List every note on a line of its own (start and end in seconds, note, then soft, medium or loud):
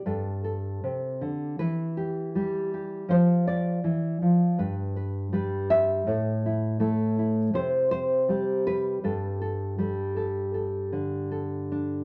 0.00 1.59 D5 medium
0.06 0.83 G2 medium
0.06 0.43 A4 soft
0.44 1.55 A4 soft
0.84 1.21 C3 soft
1.21 1.59 D3 medium
1.59 3.05 E3 medium
1.59 3.09 B4 medium
1.97 2.34 G4 soft
2.35 3.09 G3 medium
2.35 2.72 G4 soft
2.74 3.05 G4 soft
3.08 3.83 F3 medium
3.08 3.47 C5 medium
3.47 5.70 D5 medium
3.84 4.21 E3 medium
4.22 4.59 F3 soft
4.58 6.06 G2 medium
4.58 4.95 B4 soft
4.96 5.33 B4 soft
5.33 6.07 G3 medium
5.33 6.03 B4 soft
5.70 7.54 E5 medium
6.07 7.49 A2 medium
6.07 6.44 E4 soft
6.46 6.79 E4 soft
6.80 7.49 A3 medium
6.80 7.17 E4 soft
7.19 8.29 E4 soft
7.54 8.98 C3 medium
7.54 7.90 C5 medium
7.91 8.66 C5 medium
8.29 9.77 G3 medium
8.29 9.04 G4 soft
8.67 12.04 B4 medium
9.04 12.04 G2 medium
9.04 9.40 A4 soft
9.42 9.78 A4 soft
9.78 12.04 G3 medium
9.78 10.15 A4 soft
10.16 10.53 A4 soft
10.54 11.30 A4 soft
10.92 12.04 D3 soft
11.31 12.04 A4 soft
11.72 12.04 D4 soft